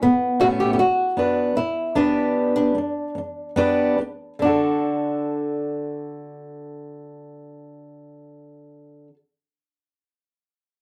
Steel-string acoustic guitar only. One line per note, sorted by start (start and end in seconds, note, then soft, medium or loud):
0.02 0.32 A2 soft
0.02 0.34 A3 soft
0.40 0.76 A2 medium
0.40 0.78 A3 medium
0.40 0.79 B3 medium
0.40 0.79 C#4 medium
0.40 0.79 E4 medium
0.78 1.09 A2 soft
0.78 1.10 A3 soft
1.17 1.54 B3 medium
1.17 1.56 D4 medium
1.17 1.57 B4 medium
1.55 1.87 B3 soft
1.55 1.89 D4 soft
1.95 2.73 B3 medium
1.95 2.78 D4 medium
1.95 2.76 G4 medium
1.95 2.76 B4 medium
2.75 3.07 B3 soft
2.75 3.09 D4 soft
3.15 3.48 B3 soft
3.15 3.50 D4 soft
3.56 3.97 B3 medium
3.56 3.99 D4 medium
3.56 3.99 G4 medium
3.56 4.00 B4 medium
3.98 4.33 B3 soft
3.98 4.34 D4 soft
4.39 9.08 D3 medium
4.45 9.14 F#4 medium
4.45 9.16 A4 medium